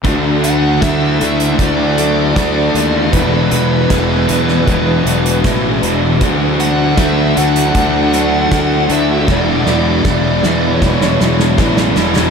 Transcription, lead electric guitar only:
0.45 0.82 F#5 loud
0.82 1.55 E5 medium
1.59 3.12 D5 medium
3.12 5.40 B4 medium
6.60 6.98 F#5 medium
6.98 7.38 E5 medium
7.38 8.92 F#5 loud
8.92 9.31 E5 medium
9.31 10.73 D5 medium
10.73 11.56 C#5 medium

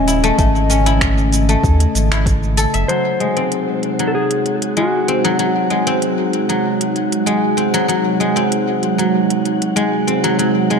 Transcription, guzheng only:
0.00 0.23 A3 medium
0.00 0.70 C#4 medium
0.08 0.86 E4 medium
0.24 0.38 A3 loud
0.39 1.48 A3 medium
0.70 3.43 C#4 medium
0.86 2.11 E4 medium
1.49 3.26 A3 medium
2.12 4.73 E4 medium
2.57 3.26 A4 loud
2.74 4.46 E5 medium
2.89 3.98 F#3 medium
3.20 4.76 G#3 medium
3.37 5.08 C4 medium
4.00 5.23 F#3 medium
4.77 5.69 G#3 medium
5.08 5.86 C4 medium
5.24 5.38 F#3 medium
5.39 6.48 F#3 medium
5.70 7.25 G#3 medium
5.87 7.57 C4 medium
6.49 7.73 F#3 medium
7.26 8.19 G#3 medium
7.57 8.36 C4 medium
7.74 7.87 F#3 loud
7.88 8.97 F#3 medium
8.20 9.75 G#3 medium
8.36 10.07 C4 medium
8.98 10.23 F#3 medium
9.76 10.69 G#3 medium
10.07 10.79 C4 medium
10.24 10.38 F#3 medium
10.39 10.79 F#3 medium
10.70 10.79 G#3 medium

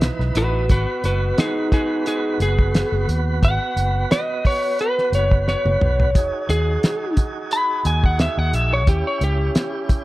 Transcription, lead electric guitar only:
0.37 0.70 F#4 medium
0.37 0.70 B4 medium
0.71 1.02 F#4 medium
0.71 1.04 B4 medium
1.05 1.36 F#4 medium
1.05 1.38 B4 medium
1.39 1.70 D#4 medium
1.39 1.72 G#4 medium
1.73 2.04 D#4 medium
1.73 2.06 G#4 medium
2.07 2.38 D#4 medium
2.07 2.40 G#4 medium
2.42 3.07 G#4 medium
3.45 4.10 F#5 medium
4.12 4.44 D#5 medium
4.47 4.79 C#5 medium
4.81 5.13 B4 loud
5.15 5.47 C#5 medium
5.49 6.47 C#5 medium
6.50 7.16 G#4 loud
7.53 7.85 B5 medium
7.87 8.04 G#5 medium
8.06 8.20 F#5 medium
8.21 8.39 E5 medium
8.39 8.55 F#5 medium
8.55 8.72 E5 medium
8.73 8.88 C#5 medium
8.89 9.06 G4 medium
9.07 9.22 C#5 medium
9.24 9.89 G4 medium

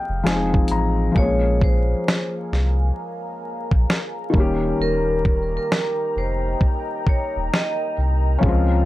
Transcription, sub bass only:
0.09 0.23 F1 medium
0.25 0.64 F1 loud
0.70 1.10 A1 medium
1.16 1.94 A#1 loud
2.52 2.91 C2 medium
3.72 3.86 A#1 medium
4.34 4.73 D#1 medium
4.79 5.58 D#1 loud
6.16 6.55 F1 medium
7.36 7.50 D#1 medium
7.98 8.37 C2 medium
8.43 8.85 C#2 loud

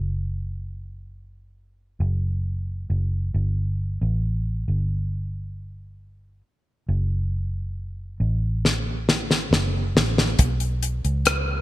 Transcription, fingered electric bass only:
0.00 1.96 F#1 medium
2.00 2.86 F#1 medium
2.90 3.31 F#1 medium
3.34 3.97 G1 medium
4.01 4.64 A1 medium
4.68 6.41 G1 medium
6.89 8.16 F#1 medium
8.20 9.48 A1 medium
9.51 9.92 F#1 medium
9.95 10.36 A1 medium
10.39 11.01 B1 medium
11.05 11.62 C#2 medium

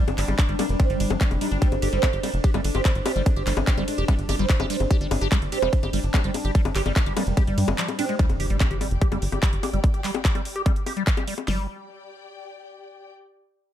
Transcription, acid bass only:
0.18 0.25 G3 medium
0.28 0.35 G3 medium
0.49 0.55 G3 medium
0.59 0.66 G3 medium
0.80 0.86 G3 medium
0.90 1.12 G3 medium
1.10 1.17 F3 loud
1.21 1.25 A#3 medium
1.41 1.48 G3 medium
1.52 1.58 D4 medium
1.62 1.68 G3 medium
1.82 1.89 G4 medium
1.93 1.99 G3 medium
2.13 2.20 G4 medium
2.23 2.30 G3 medium
2.44 2.51 G4 medium
2.54 2.61 G3 medium
2.75 2.81 G4 medium
2.85 2.92 G3 medium
3.06 3.12 G4 medium
3.16 3.23 G3 medium
3.36 3.43 G4 medium
3.47 3.53 G3 medium
3.67 3.74 G4 medium
3.78 3.84 G3 medium
3.98 4.05 G4 medium
4.08 4.15 G3 medium
4.29 4.36 G4 medium
4.39 4.46 G3 medium
4.60 4.66 G4 medium
4.70 4.77 G3 medium
4.91 4.97 G4 medium
5.01 5.08 G3 medium
5.21 5.28 G4 medium
5.32 5.38 G3 medium
5.52 5.59 G4 medium
5.62 5.69 G3 medium
5.83 5.90 G4 medium
5.93 6.00 G3 medium
6.14 6.21 G4 medium
6.24 6.31 G3 medium
6.45 6.51 G4 medium
6.55 6.62 G3 medium
6.75 6.82 G4 medium
6.86 6.92 G3 medium
7.06 7.13 G4 medium
7.17 7.23 G3 medium
7.37 7.44 G4 medium
7.47 7.69 G3 medium
7.68 7.72 G#3 medium
7.78 7.88 F3 medium
7.99 8.05 D4 medium
8.09 8.16 G#3 medium
8.19 8.26 G3 medium
8.40 8.47 G4 medium
8.50 8.57 G3 medium
8.71 8.77 G4 medium
8.81 8.88 G3 medium
9.02 9.08 G4 medium
9.12 9.19 G3 medium
9.32 9.39 G4 medium
9.43 9.49 G3 medium
9.63 9.70 G4 medium
9.73 9.80 G3 medium
9.94 10.01 G4 medium
10.04 10.11 G3 medium
10.25 10.31 G4 medium
10.35 10.42 G3 medium
10.56 10.62 G4 medium
10.66 10.73 G3 medium
10.86 10.93 G4 medium
10.97 11.03 G3 medium
11.17 11.24 G4 medium
11.28 11.34 G3 medium
11.48 11.67 G3 medium

